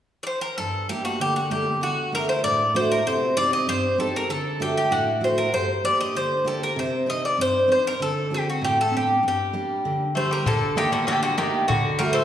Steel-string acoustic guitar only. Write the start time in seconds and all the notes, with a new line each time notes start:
0.58 G2
0.89 G3 A3 A#3
1.20 D3
1.50 G3 A3 A#3
1.81 D3
2.12 A3 D4 F#4
2.44 A2
2.74 A3 D4 F#4
3.07 C3
3.37 C4 D#4 G4
3.67 G2
3.98 C4 D#4 G4
4.29 D3
4.60 A3 D4 F#4
4.91 A2
5.21 A3 D4 F#4
5.53 G2
5.84 A#3 D4 G4
6.15 D3
6.45 A#3 D4 G4
6.76 C3
7.06 C4 D4 D#4
7.37 G2
7.68 C4 D4 D#4
8.00 D3
8.30 C4 D4 F#4
8.62 A2
8.92 C4 D4 F#5
9.23 G2
9.53 G3 A#3 D4
9.85 D3
10.15 G3 A#3 D4
10.46 G2
10.76 G3 A3 A#3
11.08 D4
11.38 G3 A3 A#3
11.68 D3
12.00 A3 D4 F#4